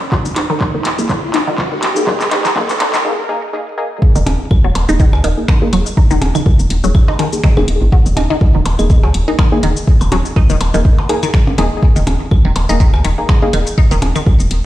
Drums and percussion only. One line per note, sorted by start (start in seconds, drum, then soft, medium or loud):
0.12 kick loud
0.12 clap medium
0.25 cabasa soft
0.36 clap medium
0.36 closed hi-hat medium
0.61 kick loud
0.61 clap medium
0.85 clap medium
0.85 closed hi-hat medium
0.99 cabasa soft
1.09 kick loud
1.09 clap medium
1.09 cabasa soft
1.34 clap medium
1.34 closed hi-hat loud
1.58 kick loud
1.58 clap medium
1.83 clap medium
1.83 closed hi-hat loud
1.96 cabasa soft
2.07 kick loud
2.07 clap medium
2.21 clap medium
2.21 cabasa soft
2.31 clap medium
2.31 closed hi-hat medium
2.45 clap medium
2.45 cabasa soft
2.56 kick loud
2.56 clap medium
2.69 clap medium
2.69 cabasa soft
2.80 clap medium
2.80 closed hi-hat medium
2.94 clap medium
2.94 cabasa soft
4.02 kick loud
4.16 cabasa soft
4.26 closed hi-hat medium
4.26 percussion blips medium
4.51 kick loud
4.51 claves medium
4.75 closed hi-hat medium
4.75 percussion blips medium
4.89 cabasa soft
5.00 kick loud
5.00 cabasa soft
5.13 percussion blips medium
5.13 claves medium
5.24 closed hi-hat medium
5.48 finger snap loud
5.48 kick loud
5.48 percussion blips medium
5.73 closed hi-hat medium
5.73 claves medium
5.86 cabasa soft
5.97 kick loud
6.11 cabasa soft
6.22 closed hi-hat medium
6.22 percussion blips medium
6.35 cabasa soft
6.35 claves medium
6.46 kick loud
6.59 cabasa soft
6.70 closed hi-hat medium
6.84 cabasa soft
6.95 kick loud
6.95 claves medium
7.08 percussion blips medium
7.19 closed hi-hat medium
7.19 percussion blips medium
7.33 cabasa soft
7.44 finger snap loud
7.44 kick loud
7.57 percussion blips medium
7.57 claves medium
7.68 closed hi-hat loud
7.92 kick loud
8.06 cabasa soft
8.17 closed hi-hat medium
8.17 percussion blips medium
8.17 claves medium
8.41 kick loud
8.66 closed hi-hat medium
8.66 percussion blips medium
8.79 cabasa soft
8.79 claves medium
8.90 kick loud
8.90 cabasa soft
9.03 percussion blips medium
9.14 closed hi-hat loud
9.39 finger snap loud
9.39 kick loud
9.39 claves medium
9.39 percussion blips medium
9.63 closed hi-hat loud
9.77 cabasa soft
9.87 kick loud
10.01 cabasa soft
10.01 claves medium
10.01 percussion blips medium
10.12 closed hi-hat medium
10.12 percussion blips medium
10.25 cabasa soft
10.36 kick loud
10.50 cabasa soft
10.61 closed hi-hat medium
10.61 claves medium
10.61 percussion blips medium
10.74 cabasa soft
10.85 kick loud
10.99 percussion blips medium
11.09 closed hi-hat medium
11.09 percussion blips medium
11.23 cabasa soft
11.23 claves medium
11.34 finger snap loud
11.34 kick loud
11.47 percussion blips medium
11.58 closed hi-hat loud
11.58 percussion blips medium
11.83 kick loud
11.96 cabasa soft
12.07 closed hi-hat medium
12.07 percussion blips medium
12.31 kick loud
12.31 claves medium
12.56 closed hi-hat medium
12.56 percussion blips medium
12.69 cabasa soft
12.80 kick loud
12.80 cabasa soft
12.94 percussion blips medium
12.94 claves medium
13.05 closed hi-hat medium
13.29 finger snap loud
13.29 kick loud
13.29 percussion blips medium
13.53 closed hi-hat medium
13.53 claves medium
13.67 cabasa soft
13.78 kick loud
13.91 cabasa soft
14.02 closed hi-hat medium
14.02 percussion blips medium
14.16 cabasa soft
14.16 claves medium
14.26 kick loud
14.40 cabasa soft
14.51 closed hi-hat medium